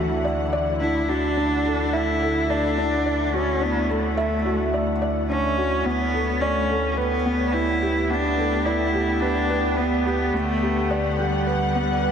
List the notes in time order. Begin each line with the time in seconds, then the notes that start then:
Already playing: D2 D3 E3 A3 D4 E4 F#4 A4 D5 E5 F#5
0.25 D5
0.53 D5
0.81 D4 E4
1.09 D4 F#4
1.37 D4
1.66 A4
1.93 E4 E5
2.22 A4
2.50 D4 D5
2.78 D4
3.06 D5
3.27 D4
3.34 C#4 F#4
3.61 B3 D4
3.89 A3 A4
4.17 E5
4.45 F#4
4.74 D5
5.02 D5
5.30 C#4 D4
5.58 F#4
5.85 D2 B3
6.14 A4
6.41 C#4 D5
6.59 B3
6.70 A4
6.77 G4
6.92 C#4
6.97 B3 B4
7.26 B3
7.53 E4 B4
7.82 G4
8.10 B3 D4
8.38 A4
8.65 E4 D5
8.94 G4
9.21 D4 B4
9.50 B4
9.77 B3
10.06 G4
10.33 D2 D3 A3 B3
10.60 G4 F#5
10.91 D5
11.18 G3 G4
11.47 B4
11.75 B3
12.02 B4